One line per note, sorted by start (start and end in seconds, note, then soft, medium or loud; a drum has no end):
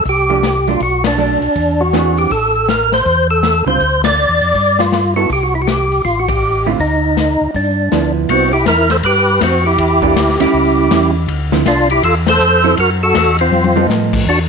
0.05 0.76 C2 medium
0.05 0.70 G4 medium
0.05 kick soft
0.05 open hi-hat soft
0.30 0.42 F3 medium
0.30 0.42 A3 medium
0.30 0.42 D4 medium
0.30 0.42 G4 medium
0.43 snare medium
0.43 closed hi-hat soft
0.67 0.79 F#3 medium
0.67 0.80 A3 medium
0.67 0.80 D4 medium
0.67 0.82 F4 medium
0.67 open hi-hat soft
0.80 1.38 B1 medium
0.80 1.04 F#4 medium
0.80 kick soft
0.80 open hi-hat soft
1.04 1.83 D4 medium
1.04 snare medium
1.04 ride medium
1.18 1.39 F#3 medium
1.18 1.40 A3 medium
1.18 1.40 D4 medium
1.41 1.48 B1 soft
1.41 open hi-hat soft
1.56 2.27 E2 medium
1.56 kick soft
1.56 open hi-hat soft
1.81 2.18 F#4 medium
1.93 2.31 E3 medium
1.93 2.31 C4 medium
1.93 2.31 D4 medium
1.93 2.31 G#4 medium
1.93 snare medium
1.93 closed hi-hat soft
2.17 2.31 G4 medium
2.17 open hi-hat soft
2.31 3.02 A1 medium
2.31 2.69 A4 medium
2.31 kick soft
2.31 open hi-hat soft
2.68 2.93 A#4 medium
2.68 snare medium
2.68 closed hi-hat medium
2.92 3.27 C5 loud
2.92 snare soft
2.92 open hi-hat soft
3.05 3.62 E2 medium
3.05 kick soft
3.05 open hi-hat soft
3.30 3.65 A4 medium
3.43 snare medium
3.43 closed hi-hat soft
3.66 3.79 C#2 medium
3.66 3.79 D3 medium
3.66 3.79 G3 soft
3.66 3.79 C4 medium
3.66 3.79 F4 medium
3.66 4.02 C5 medium
3.80 4.26 D2 medium
3.80 kick soft
3.80 open hi-hat soft
4.04 4.81 D5 loud
4.04 snare medium
4.04 ride medium
4.29 4.41 E2 medium
4.41 4.54 F2 medium
4.41 open hi-hat soft
4.55 5.26 G2 medium
4.55 kick soft
4.55 open hi-hat soft
4.79 5.14 F4 loud
4.79 snare soft
4.92 snare medium
4.92 closed hi-hat soft
5.16 5.29 B3 medium
5.16 5.29 E4 medium
5.16 5.30 F#4 medium
5.16 5.29 A4 medium
5.30 6.01 C2 medium
5.30 5.43 G4 medium
5.30 kick soft
5.30 open hi-hat soft
5.43 5.54 F#4 medium
5.55 5.61 E4 medium
5.62 5.68 F#4 medium
5.67 6.02 G4 medium
5.67 snare medium
5.67 closed hi-hat soft
5.92 open hi-hat soft
6.05 6.76 A1 medium
6.05 6.20 F4 medium
6.05 kick soft
6.05 open hi-hat soft
6.19 6.28 F#4 medium
6.28 6.67 G4 medium
6.28 kick medium
6.28 ride medium
6.66 6.78 D3 medium
6.66 6.79 A3 medium
6.66 6.79 C4 medium
6.66 6.73 E4 medium
6.66 6.79 F4 medium
6.79 7.37 D2 medium
6.79 7.51 D#4 medium
6.79 kick soft
6.79 open hi-hat soft
7.17 snare medium
7.17 closed hi-hat soft
7.41 7.48 D2 soft
7.54 7.89 G2 medium
7.54 8.12 D4 medium
7.54 kick soft
7.54 open hi-hat soft
7.91 8.26 D2 medium
7.91 8.29 F3 medium
7.91 8.29 B3 medium
7.91 8.30 E4 medium
7.91 snare medium
7.91 closed hi-hat soft
8.29 8.65 C2 medium
8.29 8.51 G3 medium
8.29 8.51 B3 medium
8.29 8.52 C4 medium
8.29 8.51 E4 medium
8.29 8.52 F#4 medium
8.29 kick soft
8.29 ride medium
8.53 8.66 E4 medium
8.53 8.65 G4 medium
8.66 9.02 E2 medium
8.66 8.90 E4 medium
8.66 8.91 A#4 medium
8.66 kick soft
8.66 snare medium
8.66 hi-hat pedal medium
8.66 ride medium
8.90 8.97 A4 medium
8.90 8.97 C5 medium
8.90 snare soft
8.90 ride soft
9.03 9.40 G2 medium
9.03 9.40 G4 medium
9.03 9.43 B4 medium
9.03 kick soft
9.03 ride medium
9.41 9.77 F2 medium
9.41 9.64 C4 medium
9.41 9.67 F#4 medium
9.41 kick soft
9.41 snare medium
9.41 hi-hat pedal medium
9.41 ride medium
9.66 10.36 E4 medium
9.66 10.40 G4 medium
9.78 10.14 E2 medium
9.78 kick soft
9.78 ride medium
10.02 10.15 E3 medium
10.02 10.15 A#3 medium
10.02 10.15 D4 medium
10.02 10.15 G4 medium
10.02 kick medium
10.16 10.38 D2 medium
10.16 kick soft
10.16 snare medium
10.16 hi-hat pedal soft
10.16 ride medium
10.29 snare soft
10.39 10.47 D2 soft
10.39 10.88 G3 medium
10.39 10.88 C#4 medium
10.39 10.88 E4 medium
10.39 11.11 E4 medium
10.39 11.11 G4 medium
10.39 snare soft
10.39 ride medium
10.53 10.89 C#2 medium
10.53 kick soft
10.91 11.27 E2 medium
10.91 11.12 G3 medium
10.91 11.12 C#4 medium
10.91 11.13 E4 medium
10.91 kick soft
10.91 snare medium
10.91 hi-hat pedal medium
10.91 ride medium
11.28 11.64 D2 medium
11.28 kick soft
11.28 ride medium
11.52 11.64 D3 medium
11.52 11.64 F3 medium
11.52 11.65 C4 medium
11.52 11.65 E4 medium
11.52 snare medium
11.65 12.02 C2 medium
11.65 11.89 D4 medium
11.65 11.88 F4 medium
11.65 kick soft
11.65 snare medium
11.65 hi-hat pedal soft
11.65 ride medium
11.90 12.03 E4 medium
11.90 12.03 G4 medium
11.90 ride soft
12.03 12.39 E2 medium
12.03 12.15 F4 medium
12.03 12.15 A4 medium
12.03 kick soft
12.03 ride medium
12.27 12.75 A4 medium
12.27 12.75 C5 loud
12.27 snare medium
12.27 ride medium
12.39 12.76 F2 medium
12.39 hi-hat pedal medium
12.64 12.76 F#3 medium
12.64 12.76 C4 medium
12.64 12.76 E4 medium
12.64 12.77 A4 medium
12.77 13.14 F#2 medium
12.77 12.90 F#4 medium
12.77 12.90 A#4 medium
12.77 kick soft
12.77 ride medium
13.03 13.37 F#4 medium
13.03 13.37 A4 medium
13.15 13.51 E2 medium
13.15 kick soft
13.15 snare medium
13.15 hi-hat pedal medium
13.15 ride medium
13.39 13.87 C4 medium
13.39 13.87 F4 medium
13.39 ride soft
13.51 13.88 F2 medium
13.51 high tom soft
13.64 high tom medium
13.76 14.24 F3 medium
13.76 14.24 B3 medium
13.76 14.24 D#4 medium
13.76 14.25 A4 medium
13.76 high tom medium
13.88 14.25 A2 medium
13.88 snare soft
13.88 hi-hat pedal medium
14.13 kick medium
14.13 crash medium
14.27 14.49 E2 medium
14.27 14.39 D4 medium
14.27 14.40 F#4 medium
14.27 kick soft